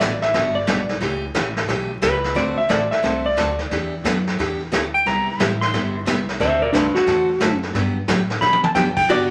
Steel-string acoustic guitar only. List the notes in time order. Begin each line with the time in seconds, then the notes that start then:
0.00 B2 G3 B3 D4 F#4
0.34 B2 G3 B3 D4 F#4
0.67 B2 G3 B3 D4 F#4
1.00 C#3 E3 A3 C#4 G4
1.34 C#3 E3 A3 C#4 G4
1.68 C#3 E3 A3 C#4 G4
2.02 C#3 E3 A3 C#4 G4
2.35 D3 A3 C4 F#4 A4
2.69 D3 A3 C4 F#4 A4
3.02 D3 A3 C4 F#4 A4
3.37 D3 A3 C4 F#4 A4
3.71 E3 B3 D4 G4
4.05 E3 B3 D4 G4
4.39 E3 B3 D4 G4
4.72 E3 B3 D4 G4
5.06 C3 G3 B3 E4 G4
5.40 C3 G3 B3 E4 G4
5.74 C3 G3 B3 E4 G4
6.06 C3 G3 B3 E4 G4
6.40 D3 A3 C4 F#4 A4
6.73 D3 A3 C4 F#4 A4
7.07 D3 A3 C4 F#4 A4
7.41 D3 A3 C4 F#4 A4
7.75 D3 F#3 B3 D4 G4
8.08 D3 F#3 B3 D4 G4
8.42 D3 F#3 B3 D4 G4
8.75 D3 F#3 B3 D4 G4
9.09 D3 F#3 B3 D4 G4